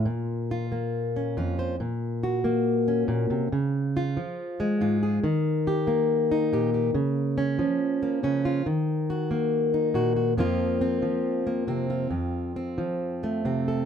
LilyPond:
\new Staff \with { instrumentName = "Steel-string acoustic guitar" } { \time 4/4 \key bes \minor \tempo 4 = 70 << { f'8 f'8. des'16 f'16 c''16 r8 ges'8. des'8. | r8 f'8. aes16 f'16 aes'16 r8 g'8. ees'16 g'16 g'16 | r8 des'8. bes16 des'16 f'16 r8 ges'8. ees'16 ges'16 ges'16 | <f bes c' f'>8 c'8. bes16 c'16 f'8. c'8. a16 c'16 a'16 | } \\ { bes,8. bes8. f,8 bes,8. bes8. bes,16 c16 | des8. f8. aes,8 ees8. bes8. bes,8 | des8. f8. des8 ees8. bes8. bes,8 | f,8. f8. c8 f,8. f8. c8 | } >> }